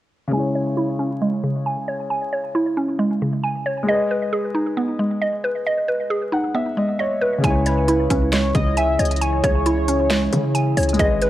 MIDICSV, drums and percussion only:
0, 0, Header, 1, 2, 480
1, 0, Start_track
1, 0, Key_signature, 4, "minor"
1, 0, Tempo, 444444
1, 352, Time_signature, 4, 2, 24, 8
1, 12202, End_track
2, 0, Start_track
2, 0, Title_t, "Drums"
2, 8032, Note_on_c, 9, 36, 117
2, 8032, Note_on_c, 9, 42, 77
2, 8140, Note_off_c, 9, 36, 0
2, 8140, Note_off_c, 9, 42, 0
2, 8272, Note_on_c, 9, 42, 85
2, 8380, Note_off_c, 9, 42, 0
2, 8512, Note_on_c, 9, 42, 78
2, 8620, Note_off_c, 9, 42, 0
2, 8751, Note_on_c, 9, 36, 88
2, 8752, Note_on_c, 9, 42, 103
2, 8859, Note_off_c, 9, 36, 0
2, 8860, Note_off_c, 9, 42, 0
2, 8992, Note_on_c, 9, 42, 74
2, 8993, Note_on_c, 9, 26, 85
2, 8993, Note_on_c, 9, 38, 105
2, 9100, Note_off_c, 9, 42, 0
2, 9101, Note_off_c, 9, 26, 0
2, 9101, Note_off_c, 9, 38, 0
2, 9232, Note_on_c, 9, 36, 93
2, 9232, Note_on_c, 9, 42, 62
2, 9340, Note_off_c, 9, 36, 0
2, 9340, Note_off_c, 9, 42, 0
2, 9472, Note_on_c, 9, 42, 86
2, 9580, Note_off_c, 9, 42, 0
2, 9712, Note_on_c, 9, 42, 76
2, 9776, Note_off_c, 9, 42, 0
2, 9776, Note_on_c, 9, 42, 64
2, 9840, Note_off_c, 9, 42, 0
2, 9840, Note_on_c, 9, 42, 56
2, 9896, Note_off_c, 9, 42, 0
2, 9896, Note_on_c, 9, 42, 45
2, 9952, Note_off_c, 9, 42, 0
2, 9952, Note_on_c, 9, 42, 76
2, 10060, Note_off_c, 9, 42, 0
2, 10192, Note_on_c, 9, 36, 95
2, 10192, Note_on_c, 9, 42, 79
2, 10300, Note_off_c, 9, 36, 0
2, 10300, Note_off_c, 9, 42, 0
2, 10432, Note_on_c, 9, 42, 76
2, 10540, Note_off_c, 9, 42, 0
2, 10672, Note_on_c, 9, 42, 107
2, 10780, Note_off_c, 9, 42, 0
2, 10912, Note_on_c, 9, 42, 76
2, 10913, Note_on_c, 9, 38, 108
2, 10914, Note_on_c, 9, 26, 87
2, 11020, Note_off_c, 9, 42, 0
2, 11021, Note_off_c, 9, 38, 0
2, 11022, Note_off_c, 9, 26, 0
2, 11152, Note_on_c, 9, 42, 63
2, 11260, Note_off_c, 9, 42, 0
2, 11392, Note_on_c, 9, 42, 88
2, 11500, Note_off_c, 9, 42, 0
2, 11632, Note_on_c, 9, 42, 75
2, 11632, Note_on_c, 9, 46, 60
2, 11696, Note_off_c, 9, 42, 0
2, 11696, Note_on_c, 9, 42, 66
2, 11740, Note_off_c, 9, 46, 0
2, 11760, Note_off_c, 9, 42, 0
2, 11760, Note_on_c, 9, 42, 56
2, 11816, Note_off_c, 9, 42, 0
2, 11816, Note_on_c, 9, 42, 45
2, 11872, Note_on_c, 9, 36, 122
2, 11873, Note_off_c, 9, 42, 0
2, 11873, Note_on_c, 9, 42, 77
2, 11980, Note_off_c, 9, 36, 0
2, 11981, Note_off_c, 9, 42, 0
2, 12113, Note_on_c, 9, 42, 81
2, 12202, Note_off_c, 9, 42, 0
2, 12202, End_track
0, 0, End_of_file